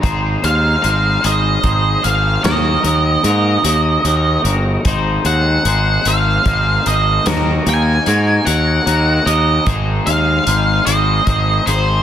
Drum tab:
HH |xxxxxx|xxxxxx|xxxxxx|xxxxxx|
SD |------|o-----|------|o-----|
BD |o---o-|------|o---o-|------|

HH |xxxxxx|
SD |------|
BD |o---o-|